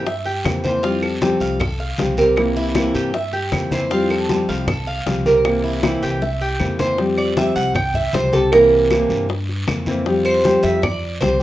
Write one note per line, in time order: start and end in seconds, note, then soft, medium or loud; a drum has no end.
0.00 0.41 G2 medium
0.06 0.25 E5 medium
0.06 muted nylon-string guitar stroke medium
0.06 high bongo medium
0.06 high conga soft
0.06 long guiro medium
0.25 0.63 G4 medium
0.25 high bongo soft
0.25 high conga soft
0.45 1.35 F2 loud
0.45 0.63 E3 soft
0.45 0.64 A#3 medium
0.45 0.64 C4 medium
0.45 0.63 E4 medium
0.45 high bongo medium
0.45 low bongo medium
0.45 high conga medium
0.45 short guiro medium
0.45 claves medium
0.64 0.83 E3 soft
0.64 0.83 A#3 medium
0.64 0.83 C4 medium
0.64 0.83 E4 medium
0.64 0.83 C5 medium
0.64 high bongo soft
0.64 high conga medium
0.64 short guiro medium
0.83 1.20 F3 medium
0.83 1.21 G3 medium
0.83 1.21 C4 medium
0.83 1.02 F4 medium
0.83 1.22 G4 medium
0.83 high bongo medium
0.83 high conga soft
0.83 long guiro medium
1.02 1.40 A4 medium
1.02 high conga soft
1.02 claves medium
1.21 1.59 F3 medium
1.21 1.60 G3 medium
1.21 1.60 C4 medium
1.21 1.60 G4 medium
1.21 high bongo medium
1.21 high conga loud
1.21 short guiro medium
1.40 1.94 C2 loud
1.40 1.60 F5 medium
1.40 high conga soft
1.40 short guiro medium
1.60 1.79 A4 medium
1.60 muted nylon-string guitar stroke medium
1.60 high bongo medium
1.60 high conga soft
1.60 low conga medium
1.60 long guiro medium
1.60 claves medium
1.79 2.17 F5 medium
1.79 high conga soft
1.98 2.89 C2 medium
1.98 2.17 F3 medium
1.98 2.17 G3 soft
1.98 2.18 C4 medium
1.98 2.17 G4 medium
1.98 high bongo medium
1.98 low bongo medium
1.98 high conga medium
1.98 short guiro medium
2.17 2.37 G3 medium
2.17 2.37 C4 medium
2.17 2.36 G4 medium
2.17 2.55 A#4 medium
2.17 high conga medium
2.17 short guiro medium
2.36 2.75 C3 medium
2.36 2.75 E3 medium
2.36 2.75 A#3 medium
2.36 2.76 C4 medium
2.36 2.76 E4 medium
2.36 high bongo medium
2.36 high conga soft
2.36 long guiro medium
2.36 claves medium
2.56 2.94 E4 medium
2.56 high conga soft
2.75 3.13 C3 medium
2.75 3.14 E3 medium
2.75 3.14 A#3 medium
2.75 3.14 C4 medium
2.75 3.14 E4 medium
2.75 high bongo medium
2.75 high conga loud
2.75 short guiro medium
2.75 claves medium
2.94 3.48 G2 medium
2.94 3.13 G4 medium
2.94 high bongo soft
2.94 high conga soft
2.94 short guiro medium
3.13 3.33 E5 medium
3.13 muted nylon-string guitar stroke medium
3.13 high bongo medium
3.13 high conga soft
3.13 long guiro medium
3.33 3.70 G4 medium
3.33 high bongo soft
3.33 high conga soft
3.52 4.43 F2 loud
3.52 3.72 E3 medium
3.52 3.72 A#3 medium
3.52 3.72 C4 medium
3.52 3.71 E4 medium
3.52 high bongo medium
3.52 low bongo medium
3.52 high conga medium
3.52 short guiro medium
3.52 claves medium
3.71 3.91 E3 medium
3.71 3.91 A#3 medium
3.71 3.91 C4 medium
3.71 3.90 E4 medium
3.71 3.90 C5 medium
3.71 high bongo soft
3.71 high conga medium
3.71 short guiro medium
3.91 4.28 F3 medium
3.91 4.29 G3 medium
3.91 4.30 C4 medium
3.91 4.10 F4 medium
3.91 4.30 G4 medium
3.91 high bongo medium
3.91 high conga soft
3.91 long guiro medium
4.10 4.47 A4 medium
4.10 high conga soft
4.10 claves medium
4.29 4.67 F3 medium
4.29 4.67 G3 medium
4.29 4.68 C4 medium
4.29 4.68 G4 medium
4.29 high bongo medium
4.29 high conga loud
4.29 short guiro medium
4.48 5.02 C2 loud
4.48 4.67 F5 medium
4.48 high conga soft
4.48 short guiro medium
4.67 4.87 A4 medium
4.67 muted nylon-string guitar stroke medium
4.67 high bongo medium
4.67 high conga soft
4.67 low conga medium
4.67 long guiro medium
4.67 claves medium
4.87 5.24 F5 medium
4.87 high conga soft
5.06 5.97 C2 medium
5.06 5.25 F3 medium
5.06 5.25 G3 medium
5.06 5.25 C4 medium
5.06 5.24 G4 soft
5.06 high bongo medium
5.06 low bongo medium
5.06 high conga medium
5.06 short guiro medium
5.25 5.45 G3 medium
5.25 5.44 C4 medium
5.25 5.44 G4 medium
5.25 5.63 A#4 medium
5.25 high conga medium
5.25 short guiro medium
5.45 5.82 C3 medium
5.45 5.82 E3 medium
5.45 5.83 A#3 medium
5.45 5.83 C4 medium
5.45 5.83 E4 medium
5.45 high bongo medium
5.45 high conga soft
5.45 long guiro medium
5.45 claves medium
5.64 6.01 E4 medium
5.64 high conga soft
5.83 6.20 C3 medium
5.83 6.20 E3 medium
5.83 6.20 A#3 medium
5.83 6.21 C4 medium
5.83 6.21 E4 medium
5.83 high bongo medium
5.83 high conga loud
5.83 short guiro medium
5.83 claves medium
6.02 6.56 C2 loud
6.02 6.21 G4 medium
6.02 high conga soft
6.02 short guiro medium
6.21 6.40 E5 medium
6.21 muted nylon-string guitar stroke medium
6.21 low bongo medium
6.21 high conga soft
6.21 long guiro medium
6.41 6.78 G4 medium
6.41 high conga soft
6.59 7.50 F2 loud
6.59 6.78 E3 medium
6.59 6.79 A#3 soft
6.59 6.78 C4 soft
6.59 6.78 E4 medium
6.59 low bongo medium
6.59 high conga medium
6.59 short guiro medium
6.59 claves medium
6.79 6.98 E3 medium
6.79 6.98 A#3 medium
6.79 6.98 C4 medium
6.79 6.98 E4 medium
6.79 6.98 C5 medium
6.79 low bongo medium
6.79 high conga medium
6.79 short guiro medium
6.98 7.36 F3 medium
6.98 7.36 G3 medium
6.98 7.37 C4 medium
6.98 7.37 G4 medium
6.98 high bongo medium
6.98 high conga soft
6.98 long guiro medium
7.18 7.36 D5 medium
7.18 high conga soft
7.18 claves medium
7.37 7.74 F3 medium
7.37 7.74 G3 medium
7.37 7.75 C4 medium
7.37 7.75 G4 medium
7.37 7.55 E5 medium
7.37 high bongo medium
7.37 high conga loud
7.37 short guiro medium
7.56 8.10 C2 loud
7.56 7.75 F#5 loud
7.56 high conga soft
7.56 short guiro medium
7.74 7.94 G5 medium
7.74 muted nylon-string guitar stroke medium
7.74 high bongo medium
7.74 high conga soft
7.74 low conga medium
7.74 long guiro medium
7.74 claves medium
7.94 8.13 E5 medium
7.94 high conga soft
7.94 low conga medium
8.13 9.04 C2 loud
8.13 8.32 F3 soft
8.13 8.33 G3 soft
8.13 8.33 C4 medium
8.13 8.32 G4 medium
8.13 8.33 C5 medium
8.13 high bongo medium
8.13 low bongo medium
8.13 high conga medium
8.13 short guiro medium
8.33 8.53 G3 medium
8.33 8.52 C4 medium
8.33 8.51 G4 medium
8.33 8.52 A4 medium
8.33 high conga medium
8.33 short guiro medium
8.52 8.90 C3 medium
8.52 8.90 E3 medium
8.52 8.90 A#3 medium
8.52 8.91 C4 medium
8.52 8.91 E4 medium
8.52 9.25 A#4 medium
8.52 high bongo medium
8.52 high conga soft
8.52 long guiro medium
8.52 claves medium
8.72 high conga soft
8.90 9.29 C3 medium
8.90 9.29 E3 medium
8.90 9.29 A#3 medium
8.90 9.29 C4 medium
8.90 9.30 E4 medium
8.90 high bongo medium
8.90 high conga medium
8.90 short guiro medium
8.90 claves medium
9.09 9.63 G2 loud
9.09 high bongo soft
9.09 high conga soft
9.09 short guiro medium
9.29 muted nylon-string guitar stroke medium
9.29 high bongo medium
9.29 high conga soft
9.29 long guiro medium
9.49 high bongo soft
9.49 high conga soft
9.67 10.58 F2 loud
9.67 9.87 E3 medium
9.67 9.87 A#3 medium
9.67 9.87 C4 medium
9.67 9.86 E4 medium
9.67 high bongo medium
9.67 low bongo medium
9.67 high conga medium
9.67 short guiro medium
9.67 claves medium
9.86 10.06 E3 medium
9.86 10.06 A#3 medium
9.86 10.06 C4 medium
9.86 10.05 E4 medium
9.86 high bongo soft
9.86 high conga medium
9.86 short guiro medium
10.06 10.43 F3 medium
10.06 10.44 G3 medium
10.06 10.45 C4 medium
10.06 10.45 G4 medium
10.06 high bongo medium
10.06 long guiro medium
10.25 10.61 C5 loud
10.25 high conga soft
10.25 claves medium
10.44 10.82 F3 medium
10.44 10.83 G3 medium
10.44 10.83 C4 medium
10.44 10.83 G4 medium
10.44 high bongo medium
10.44 high conga loud
10.44 short guiro medium
10.63 11.17 F2 loud
10.63 10.82 E5 loud
10.63 high conga soft
10.63 short guiro medium
10.82 11.19 D5 medium
10.82 muted nylon-string guitar stroke medium
10.82 high bongo medium
10.82 high conga soft
10.82 low conga medium
10.82 long guiro medium
10.82 claves medium
11.03 high conga soft
11.21 11.43 C2 loud
11.21 11.40 F3 medium
11.21 11.40 G3 medium
11.21 11.40 C4 medium
11.21 11.39 G4 medium
11.21 11.40 C5 medium
11.21 high bongo medium
11.21 low bongo medium
11.21 high conga medium
11.21 short guiro medium
11.40 11.43 G4 medium